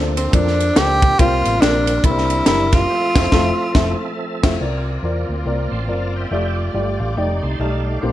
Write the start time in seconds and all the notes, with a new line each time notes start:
Already playing: D2 A#2 F3 A#3 C4 D4 F4 A4 C5
0.17 C4, ride
0.33 F2 A#3 D4 F4 A4 C5, kick, ride
0.47 snare
0.60 ride
0.76 C#2 A#3 D4 F4 G4 A4 C5, snare, ride
1.02 kick, ride
1.19 C2 C3 G3 A#3 C4 F4 G4 A#4 C5, kick, ride
1.45 A1, ride
1.61 A#1 A#3 C4 D4 F4 G4 A4, snare, ride
1.68 A#4
1.87 ride
2.04 C2 C3 G3 A#3 C4 D4 E4 G4 A4 A#4, kick, ride
2.10 A#4 C5
2.18 snare
2.30 ride
2.46 F#1 A#3 D4 E4 G4 A#4, snare, ride
2.72 F4, kick, snare, ride
2.90 F3 A3 C4 G4 E5
2.95 A4
3.15 F1 A3 C4 E4 F4, kick, snare, crash
3.22 C5
3.32 F1 A3 C4 E4 F4 A4, kick, snare
3.75 F1 A3 C4 E4 F4, kick, snare
4.43 F1 A3 C4 E4 F4 C5, kick, snare, crash
4.59 C2 C3 A#3 C4 E4 F4 A#4 D5
4.66 F4
5.03 E2 C4 F4 A#4 D5
5.29 D2
5.45 C2 C4 F4 A#4 D5
5.71 A1 A5 C6
5.88 F#1 C4 F4 A#4 D5 F5 A5
6.16 E5 G5
6.31 F1 G3 A3 F4 G4 D5
6.73 G1 G3 F4 G4 D5
6.79 A3
7.00 A1 F5
7.17 F1 A3 D#4 G4 D5 G5
7.42 C2 A5 C6
7.59 B1 A3 D#4 G4 D5 F5 A5
7.86 D5 F5
8.01 A#1 A#2 A#3 C4 D4 G4 C5